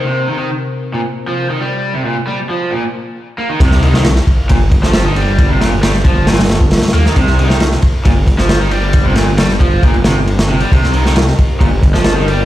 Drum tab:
CC |--------------------------------|--------------------------------|x-------------------------------|--------------------------------|
RD |--------------------------------|--------------------------------|x---x---x---x---x---x---x---x---|x---x---x---x---xxxxx---xxxxx---|
SD |--------------------------------|--------------------------------|--o---o-o-o-----------o-o-------|----o---o-o-----ooooo---oooo--o-|
BD |--------------------------------|--------------------------------|o-----------o---o---o-----------|o-----------o---------o---------|

CC |--------------------------------|--------------------------------|--------------------------------|
RD |x---x---x---x---x---x---x---x---|x---x---x---x---x-x-x---x-x---x-|x---x---x---x---x---x---x---x---|
SD |--o---o-o-o-----------o-o-------|----o---o-o---------o-----o-----|--o---o-o-o-----------o-o-------|
BD |o-----------o---o---o-----------|o-----------o---o---------------|o-----------o---o---o-----------|